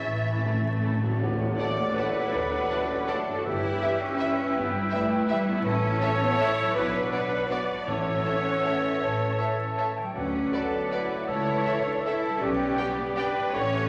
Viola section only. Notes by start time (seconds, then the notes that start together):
0.06 E3
0.44 A3
1.03 F#3
1.59 D5
1.97 B4
3.10 A4
3.46 G4
4.20 E4
6.02 C#5
6.76 B4
7.13 B4
7.51 D5
7.88 C#5
10.53 A4
10.92 B4
11.28 C#5
12.06 A4
12.43 G4
13.18 B4
13.54 C#5